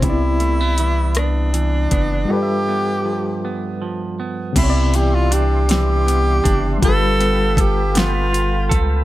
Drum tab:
CC |------|------|x-----|------|
HH |xxxxxx|------|xxxxxx|xxxxxx|
SD |---r--|------|---o--|---o--|
BD |o----o|------|o----o|o-o--o|